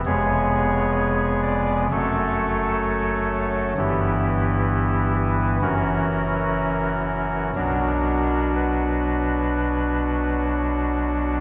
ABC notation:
X:1
M:4/4
L:1/8
Q:1/4=64
K:Bm
V:1 name="Pipe organ"
c3 d c3 c | G3 B ^A3 A | ^A2 B4 z2 |]
V:2 name="Pipe organ" clef=bass
[^E,,,^E,,^G,B,^G]4 [F,,,F,,F,A,A]4 | [G,,,G,,E,B,E]4 [F,,,F,,E,CF]4 | [B,,,B,,F,DF]8 |]